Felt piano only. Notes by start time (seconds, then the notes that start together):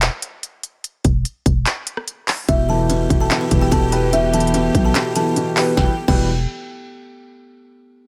2.49 B2
2.69 E3
2.90 B2
3.10 B2
3.31 B2
3.51 E3
3.72 B2
3.92 B4
4.13 B2
4.34 E3
4.54 B2
4.75 B2
4.95 B2
5.16 E3
5.36 B2
5.57 B4
5.77 B2 E3 G3 B3
6.08 B2 E3 G3 B3